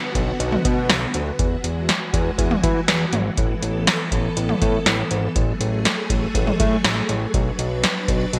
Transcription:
Already playing: D3 B3 F#4
0.15 B1, kick, closed hi-hat
0.40 B1, closed hi-hat
0.52 mid tom
0.65 B2, kick, closed hi-hat
0.89 B1, snare, closed hi-hat
1.14 D2, closed hi-hat
1.39 E2 E3 G#3 F#4, kick, closed hi-hat
1.64 E2, closed hi-hat
1.89 snare, closed hi-hat
2.13 E2, kick, closed hi-hat
2.38 E2, kick, closed hi-hat
2.51 mid tom
2.63 E3, kick, closed hi-hat
2.88 E2, snare, closed hi-hat
3.13 G#1, closed hi-hat, mid tom
3.37 A1 B3 A4, kick, closed hi-hat
3.62 A1, closed hi-hat
3.87 snare, closed hi-hat
4.12 A1, kick, closed hi-hat
4.37 A1, closed hi-hat
4.49 mid tom
4.62 A2, kick, closed hi-hat
4.86 A1, snare, closed hi-hat
5.11 G#1, closed hi-hat
5.36 A1 F#3 A3 G#4, kick, closed hi-hat
5.61 A1, closed hi-hat
5.85 snare, closed hi-hat
6.10 A1, kick, closed hi-hat
6.35 A1, kick, closed hi-hat
6.47 mid tom
6.60 A2, kick, closed hi-hat
6.84 A1, snare, closed hi-hat
7.09 A1, closed hi-hat
7.34 B1 D4 B4, kick, closed hi-hat
7.59 B1, closed hi-hat
7.84 snare, closed hi-hat
8.08 B1, kick, closed hi-hat
8.33 B1, closed hi-hat

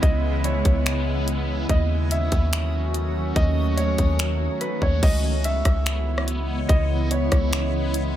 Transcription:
Already playing: C#3 E3 G#3 B3 E4 C#5
0.02 C#2 D#5, kick, closed hi-hat
0.44 C#5, closed hi-hat
0.65 C#2, kick, closed hi-hat
0.86 finger snap, closed hi-hat
1.28 closed hi-hat
1.69 D#2 D#3 F#3 A3 C#4 F#4 D#5 D#6, kick, closed hi-hat
2.11 E5, closed hi-hat
2.32 D#2, kick, closed hi-hat
2.53 finger snap, closed hi-hat
2.94 closed hi-hat
3.36 D#2 D#5, kick, closed hi-hat
3.77 C#5, closed hi-hat
3.98 D#2, kick, closed hi-hat
4.19 finger snap, closed hi-hat
4.61 B4, closed hi-hat
4.82 D#2 C#5, kick
5.03 C#2 C#3 E3 G#3 B3 E4 C#5 D#5, kick, closed hi-hat, crash
5.44 E5, closed hi-hat
5.65 C#2, kick, cross-stick, closed hi-hat
5.86 finger snap, closed hi-hat
6.18 cross-stick
6.28 closed hi-hat
6.69 C#2 D#5, kick, closed hi-hat
7.11 C#5, closed hi-hat
7.32 C#2, kick, cross-stick, closed hi-hat
7.53 finger snap, closed hi-hat
7.94 closed hi-hat

